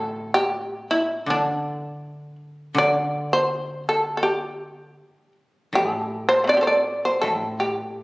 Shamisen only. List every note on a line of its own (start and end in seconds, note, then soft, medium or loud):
0.00 0.31 A4 medium
0.34 0.87 G4 medium
0.91 1.25 E4 medium
1.30 2.35 D4 medium
2.78 3.28 D5 medium
3.33 3.83 C5 medium
3.89 4.15 A4 soft
4.17 4.23 A4 soft
4.23 5.32 G4 soft
5.75 6.27 A4 medium
6.29 6.47 C5 medium
6.44 6.47 A3 soft
6.44 6.61 C4 soft
6.49 6.53 D4 soft
6.49 6.62 D5 medium
6.54 6.57 E4 soft
6.54 6.61 G4 soft
6.61 6.75 A4 soft
6.61 6.67 C5 soft
6.67 7.02 D5 medium
7.05 7.21 C5 medium
7.22 7.57 A4 medium
7.60 8.03 G4 soft